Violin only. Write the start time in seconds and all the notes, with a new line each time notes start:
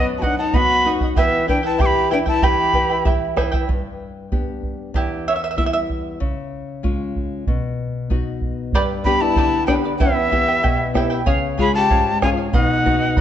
0.19 F#4
0.24 D4
0.41 D#4
0.57 F#4
1.17 B3
1.49 D4
1.64 E4
1.81 G4
2.13 D4
2.26 E4
2.44 G4
9.06 G4
9.22 E4
9.68 D4
10.00 B3
11.60 G#4
11.77 G4
12.24 F4
12.56 D#4